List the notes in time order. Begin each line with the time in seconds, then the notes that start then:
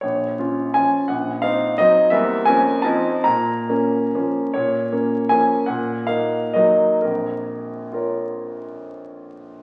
0.01 A#1 C#5
0.39 C#4 F4
0.74 F3 C#4 F4 G#5
1.08 A#1 F#5
1.42 C4 D#4 F5
1.78 F#3 C4 D#4 D#5
2.10 E2 G3 A#3 C4 E5
2.45 F2 F3 A#3 C#4 G#5
2.82 F2 F3 C4 D#4 A5
3.24 A#2 A#5
3.69 A#3 C#4
4.15 F3 A#3 C#4
4.54 A#2 C#5
4.92 A#3 C#4
5.29 F3 A#3 C#4 G#5
5.66 A#2 F#5
6.07 A#3 D#4 F5
6.54 F#3 A#3 D#4 D#5
7.02 A#1 F2 A#4
7.92 F4 A#4 C#5